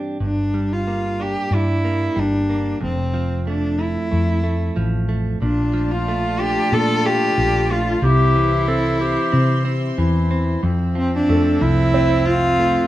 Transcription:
0.00 0.17 G2 soft
0.00 0.18 E3 soft
0.00 0.17 C4 medium
0.00 0.17 D4 medium
0.00 0.17 G4 medium
0.20 1.35 G1 medium
0.20 2.77 G2 medium
0.20 0.75 D4 medium
0.54 2.15 G3 soft
0.73 1.24 F4 medium
0.87 1.83 A#3 medium
1.20 1.51 D4 soft
1.20 1.56 G4 medium
1.51 2.08 G2 medium
1.51 2.78 D4 medium
1.55 2.21 E4 medium
1.84 2.48 A#3 soft
2.16 2.73 G1 medium
2.16 2.77 G3 medium
2.16 2.83 D4 medium
2.50 2.78 A#3 soft
2.81 3.96 F1 medium
2.81 5.41 F2 medium
2.81 3.44 C4 medium
3.14 4.75 F3 medium
3.47 3.78 A3 medium
3.47 3.83 D4 medium
3.79 4.11 A3 medium
3.79 4.78 E4 medium
4.11 4.69 F2 medium
4.11 4.42 A3 medium
4.44 5.07 A3 medium
4.76 5.34 A1 medium
4.76 5.38 F3 medium
5.09 5.38 A3 medium
5.42 6.56 A#1 medium
5.42 8.02 A#2 medium
5.42 8.00 A3 medium
5.42 5.93 D4 medium
5.42 7.99 F4 medium
5.42 8.01 D5 medium
5.42 8.00 F5 medium
5.42 8.01 A5 medium
5.73 7.37 F3 medium
5.92 6.41 F4 medium
6.08 7.04 A3 medium
6.40 6.72 D4 soft
6.40 6.76 G4 medium
6.72 7.29 A#2 medium
6.72 7.99 D4 medium
6.72 7.07 A4 loud
7.05 7.70 A3 medium
7.05 7.74 G4 loud
7.38 7.95 A#1 medium
7.38 7.99 F3 medium
7.71 7.99 A3 medium
7.71 8.06 F4 medium
8.02 9.17 C2 loud
8.02 8.35 C3 medium
8.02 10.00 E4 medium
8.02 8.64 G4 loud
8.02 10.62 G4 medium
8.02 10.61 C5 medium
8.02 10.61 E5 medium
8.02 10.62 C6 medium
8.36 9.97 E3 medium
8.68 8.99 C4 medium
8.68 8.98 A4 medium
9.00 9.31 C4 soft
9.00 9.68 G4 medium
9.32 9.91 C3 medium
9.32 9.64 C4 medium
9.65 10.30 C4 medium
9.98 10.56 E2 medium
9.98 10.60 E3 medium
9.98 10.60 E4 medium
10.31 10.60 C4 medium
10.62 12.87 F2 medium
10.62 11.21 F2 medium
10.62 12.87 F3 medium
10.62 12.87 C4 medium
10.62 12.87 C5 medium
10.62 12.87 E5 medium
10.95 11.60 F3 medium
10.95 11.13 C4 medium
11.16 11.64 D4 medium
11.29 11.58 F2 medium
11.29 12.59 A3 medium
11.29 12.76 A4 medium
11.61 12.76 C2 medium
11.61 12.87 F3 medium
11.61 12.29 E4 loud
11.94 12.25 C4 medium
11.94 12.87 C5 medium
12.26 12.87 C4 medium
12.26 12.87 F4 loud
12.59 12.87 A3 medium

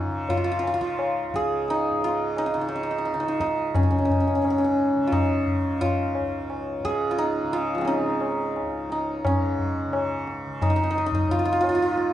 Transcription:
0.00 1.28 C#2 medium
0.00 1.90 G#2 medium
0.00 0.05 C#3 medium
0.00 3.00 C#4 medium
0.00 1.70 D#4 medium
0.00 0.29 F4 medium
0.05 0.68 C#3 medium
0.29 0.37 F4 medium
0.29 tabla tin medium
0.29 tabla ge medium
0.37 0.44 F4 medium
0.44 0.51 F4 medium
0.52 0.59 F4 medium
0.59 0.67 F4 medium
0.63 0.73 F4 medium
0.63 tabla na medium
0.68 2.53 C#3 medium
0.74 0.81 F4 medium
0.81 2.04 F4 medium
0.81 tabla ke medium
0.99 tabla na medium
1.29 3.74 C#2 medium
1.34 4.38 G#4 medium
1.34 tabla ke medium
1.68 2.38 D#4 medium
1.68 tabla te medium
1.90 4.33 G#2 medium
2.02 5.07 F4 medium
2.02 tabla te soft
2.37 2.46 D#4 medium
2.37 tabla na medium
2.46 2.54 D#4 medium
2.53 3.12 C#3 medium
2.53 2.61 D#4 medium
2.61 2.68 D#4 soft
2.68 2.75 D#4 medium
2.68 tabla na medium
2.76 2.83 D#4 soft
2.83 2.90 D#4 medium
2.91 2.98 D#4 soft
2.98 3.05 D#4 medium
3.05 3.13 D#4 soft
3.05 tabla te medium
3.12 4.95 C#3 medium
3.12 3.20 D#4 medium
3.20 3.28 D#4 medium
3.20 tabla te medium
3.28 3.40 D#4 medium
3.40 5.12 D#4 medium
3.40 tabla ke medium
3.58 tabla te medium
3.74 6.17 C#2 medium
3.74 3.83 C#4 medium
3.74 tabla na loud
3.74 tabla ge medium
3.83 3.90 C#4 soft
3.91 3.98 C#4 soft
3.98 4.05 C#4 soft
4.05 4.11 C#4 medium
4.09 4.20 C#4 soft
4.09 tabla ge medium
4.20 4.27 C#4 soft
4.27 4.35 C#4 soft
4.34 6.79 G#2 medium
4.34 4.42 C#4 soft
4.42 4.50 C#4 soft
4.42 tabla na medium
4.50 4.58 C#4 medium
4.58 4.64 C#4 soft
4.64 7.84 C#4 medium
4.78 tabla te medium
4.95 5.57 C#3 medium
5.07 5.81 F4 medium
5.12 7.18 D#4 medium
5.12 tabla na medium
5.12 tabla ge medium
5.47 tabla ge soft
5.57 7.41 C#3 medium
5.81 7.11 F4 medium
5.81 tabla tin medium
5.81 tabla ge medium
6.15 8.60 C#2 medium
6.15 tabla na medium
6.50 tabla na medium
6.79 9.24 G#2 medium
6.85 9.88 G#4 medium
6.85 tabla ke medium
7.11 7.53 F4 medium
7.18 7.87 D#4 medium
7.18 tabla te medium
7.41 8.00 C#3 medium
7.53 10.91 F4 medium
7.53 tabla te medium
7.75 7.93 F3 soft
7.75 12.13 G#3 soft
7.81 9.33 C4 soft
7.81 9.26 C#4 soft
7.86 8.91 D#4 medium
7.86 tabla na medium
8.00 9.85 C#3 soft
8.21 tabla na medium
8.56 tabla na medium
8.61 11.08 C#2 medium
8.90 10.62 D#4 medium
8.90 tabla te medium
9.24 11.67 G#2 medium
9.24 12.13 C#4 medium
9.24 tabla na loud
9.24 tabla ge medium
9.59 tabla ge medium
9.85 10.46 C#3 medium
9.93 tabla na medium
10.27 tabla te medium
10.46 12.13 C#3 medium
10.62 10.69 D#4 medium
10.62 tabla na medium
10.62 tabla ge medium
10.70 10.76 D#4 medium
10.76 10.83 D#4 medium
10.83 10.90 D#4 medium
10.91 10.97 D#4 medium
10.96 11.06 D#4 medium
10.96 tabla te medium
11.06 12.13 C#2 medium
11.06 11.14 D#4 medium
11.12 12.13 D#4 medium
11.12 tabla ge medium
11.29 11.39 F4 medium
11.29 tabla tin medium
11.29 tabla ge medium
11.39 11.45 F4 medium
11.45 11.52 F4 medium
11.53 11.60 F4 medium
11.61 11.68 F4 medium
11.61 tabla na medium
11.67 12.13 G#2 medium
11.67 11.74 F4 medium
11.75 11.82 F4 medium
11.82 12.13 F4 medium
11.97 tabla te medium

